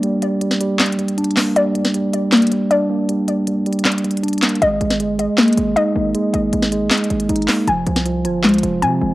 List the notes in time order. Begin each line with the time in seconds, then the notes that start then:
Already playing: G3 A#3 D4 D5
0.03 G3, closed hi-hat
0.22 G3, closed hi-hat
0.41 G3, closed hi-hat
0.51 snare
0.61 G3, closed hi-hat
0.79 G3, snare, clap, closed hi-hat
0.86 closed hi-hat
0.92 closed hi-hat
0.99 G3, closed hi-hat
1.08 closed hi-hat
1.18 D4, closed hi-hat
1.24 closed hi-hat
1.31 closed hi-hat
1.37 A#3, snare, clap, open hi-hat
1.56 G3 D5, closed hi-hat
1.75 G3, closed hi-hat
1.85 snare, closed hi-hat
1.94 G3, closed hi-hat
2.13 G3, closed hi-hat
2.32 G3 A#3, snare, clap, closed hi-hat
2.37 closed hi-hat
2.42 closed hi-hat
2.47 closed hi-hat
2.52 G3, closed hi-hat
2.71 D4 D5, closed hi-hat
2.90 A#3
3.09 G3, closed hi-hat
3.28 G3, closed hi-hat
3.47 G3, closed hi-hat
3.66 G3, closed hi-hat
3.73 closed hi-hat
3.79 closed hi-hat
3.85 G3, snare, clap, closed hi-hat
3.92 closed hi-hat
3.98 closed hi-hat
4.04 G3, closed hi-hat
4.11 closed hi-hat
4.17 closed hi-hat
4.23 D4, closed hi-hat
4.28 closed hi-hat
4.33 closed hi-hat
4.38 closed hi-hat
4.42 A#3, snare, clap, closed hi-hat, open hi-hat
4.49 closed hi-hat
4.55 closed hi-hat
4.62 G#1 G#3 D#5, closed hi-hat
4.81 G#1 G#3, closed hi-hat
4.90 snare, closed hi-hat
5.00 G1 G#3, closed hi-hat
5.14 G#1
5.19 G#3, closed hi-hat
5.38 G#3 A#3, snare, clap, closed hi-hat
5.43 closed hi-hat
5.48 closed hi-hat
5.53 closed hi-hat
5.57 G#1 G#3, closed hi-hat
5.76 D#4 D#5, closed hi-hat
5.95 G#1 A#3
6.15 G#3, closed hi-hat
6.34 G#1 G#3, closed hi-hat
6.53 G#1 G#3, closed hi-hat
6.62 snare
6.72 G#3, closed hi-hat
6.91 G#3, snare, clap, closed hi-hat
6.97 closed hi-hat
7.04 closed hi-hat
7.10 G#1 G#3, closed hi-hat
7.20 closed hi-hat
7.29 G#1 D#4, closed hi-hat
7.36 closed hi-hat
7.42 closed hi-hat
7.48 A#3, snare, clap, open hi-hat
7.67 F1 F3 G#5, closed hi-hat
7.87 C2 F3, closed hi-hat
7.96 snare, closed hi-hat
8.06 F3, closed hi-hat
8.25 G1 F3, closed hi-hat
8.44 C2 F3 G#3, snare, clap, closed hi-hat
8.49 closed hi-hat
8.54 closed hi-hat
8.58 closed hi-hat
8.63 F1 F3, closed hi-hat
8.82 C3 C4 G#5, closed hi-hat
9.01 F1 G#3